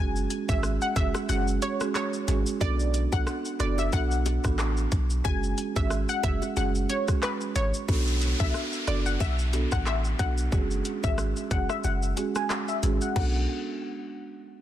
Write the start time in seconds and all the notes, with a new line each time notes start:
Already playing: F#1 G#3 C#4 F#4 G#4 G#5
0.16 shaker
0.30 closed hi-hat, shaker
0.48 G#1 G#3 C#4 F#4 G#4 E5, kick, high bongo, shaker
0.63 cross-stick, shaker
0.82 F#5, shaker
0.96 F#1 G#3 C#4 F#4 G#4 E5, kick, closed hi-hat, high bongo, shaker
1.14 cross-stick, high bongo, shaker
1.29 F#1 G#3 C#4 F#4 G#4 F#5, high bongo, shaker
1.48 shaker
1.62 C#5, closed hi-hat, high bongo, shaker
1.80 G#3 C#4 F#4 G#4, cross-stick, shaker
1.95 C#5, cross-stick, clap, shaker
2.13 shaker
2.28 G#1 G#3 C#4 F#4 G#4, closed hi-hat, low bongo, shaker
2.47 shaker
2.61 B1 B3 D4 F#4 A4 D5, kick, high bongo, shaker
2.80 shaker
2.94 closed hi-hat, shaker
3.12 B1 B3 D4 F#4 A4 F#5, kick, high bongo, shaker
3.27 cross-stick, shaker
3.45 shaker
3.60 F#1 B3 D4 F#4 A4 D5, cross-stick, closed hi-hat, high bongo, shaker
3.78 E5, high bongo, shaker
3.92 B1 B3 D4 F#4 A4 F#5, kick, high bongo, shaker
4.11 shaker
4.26 closed hi-hat, high bongo, shaker
4.44 A1 B3 D4 F#4 A4, kick, cross-stick, shaker
4.59 cross-stick, clap, shaker
4.77 shaker
4.92 B1, kick, closed hi-hat, low bongo, shaker
5.10 shaker
5.24 F#1 G#3 C#4 F#4 G#4 G#5, kick, high bongo, shaker
5.43 shaker
5.58 closed hi-hat, shaker
5.76 G#1 G#3 C#4 F#4 G#4 E5, kick, high bongo, shaker
5.90 cross-stick, shaker
6.09 F#5, shaker
6.23 F#1 G#3 C#4 F#4 G#4 E5, kick, closed hi-hat, high bongo, low bongo, shaker
6.42 high bongo, shaker
6.56 F#1 G#3 C#4 F#4 G#4 F#5, high bongo, shaker
6.75 shaker
6.89 C#5, closed hi-hat, high bongo, shaker
7.08 G#3 C#4 F#4 G#4, kick, cross-stick, shaker
7.23 B4, cross-stick, clap, shaker
7.41 shaker
7.56 G#1 C#5, closed hi-hat, low bongo, shaker
7.74 shaker
7.88 B1 B3 D4 F#4 A4, kick, downlifter, high bongo, shaker
8.07 shaker
8.22 closed hi-hat, shaker
8.40 B1 B3 D4 F#4 A4 E5, kick, shaker
8.54 cross-stick, shaker
8.73 shaker
8.87 F#1 B3 D4 F#4 A4 D5, cross-stick, closed hi-hat, shaker
9.06 F#5, shaker
9.20 B1 E5, kick, high bongo, shaker
9.39 shaker
9.53 B3 D4 F#4 A4, closed hi-hat, high bongo, shaker
9.72 A1 F#5, kick, cross-stick, shaker
9.86 E5, cross-stick, clap, shaker
10.05 shaker
10.19 B1 B3 D4 F#4 A4 F#5, kick, closed hi-hat, low bongo, shaker
10.38 shaker
10.52 F#1 G#3 C#4 F#4 G#4, kick, high bongo, shaker
10.71 shaker
10.85 closed hi-hat, shaker
11.03 G#1 G#3 C#4 F#4 G#4 E5, kick, shaker
11.18 cross-stick, shaker
11.36 shaker
11.51 F#1 G#3 C#4 F#4 G#4 F#5, kick, closed hi-hat, shaker
11.69 E5, cross-stick, shaker
11.84 F#1 F#5, high bongo, shaker
12.03 shaker
12.17 G#3 C#4 F#4 G#4, closed hi-hat, high bongo, shaker
12.35 G#5, cross-stick, shaker
12.50 cross-stick, clap, shaker
12.68 E5, shaker
12.83 G#1 G#3 C#4 F#4 G#4, closed hi-hat, low bongo, shaker
13.01 F#5, shaker
13.15 B1 B3 D4 F#4 A4 F#5, kick, crash, high bongo